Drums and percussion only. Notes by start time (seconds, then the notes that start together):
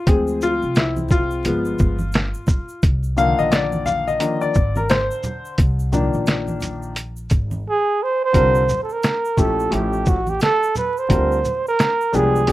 0.07 kick, closed hi-hat, shaker
0.27 shaker
0.41 shaker
0.62 shaker
0.75 snare, closed hi-hat, shaker
0.96 high conga, shaker
1.08 kick, low conga, shaker
1.11 shaker
1.31 shaker
1.45 closed hi-hat, shaker
1.65 shaker
1.79 kick, shaker
1.99 high conga, shaker
2.12 snare, closed hi-hat, shaker
2.34 shaker
2.47 kick, low conga, shaker
2.69 shaker
2.83 kick, closed hi-hat, shaker
3.03 shaker
3.17 shaker
3.39 shaker
3.52 snare, closed hi-hat, shaker
3.72 high conga, shaker
3.86 low conga, shaker
4.08 shaker
4.20 closed hi-hat, shaker
4.41 shaker
4.54 kick, shaker
4.76 high conga, shaker
4.89 snare, closed hi-hat, shaker
5.11 shaker
5.23 low conga, shaker
5.45 shaker
5.58 kick, closed hi-hat, shaker
5.79 shaker
5.93 low conga, shaker
6.13 shaker
6.26 snare, closed hi-hat, shaker
6.48 high conga, shaker
6.60 closed hi-hat, low conga, shaker
6.62 shaker
6.82 shaker
6.96 closed hi-hat, shaker
7.17 shaker
7.30 kick, closed hi-hat, shaker
7.51 high conga, shaker
8.34 kick, closed hi-hat, shaker
8.55 shaker
8.69 low conga, shaker
8.89 shaker
9.03 snare, closed hi-hat, shaker
9.25 shaker
9.37 kick, low conga, shaker
9.60 shaker
9.72 closed hi-hat, shaker
9.93 shaker
10.06 kick, shaker
10.27 high conga, shaker
10.40 snare, closed hi-hat, shaker
10.63 shaker
10.75 low conga, shaker
10.97 shaker
11.10 kick, closed hi-hat, shaker
11.32 shaker
11.45 low conga, shaker
11.67 shaker
11.79 snare, closed hi-hat, shaker
12.01 shaker
12.14 low conga, shaker
12.36 shaker
12.47 closed hi-hat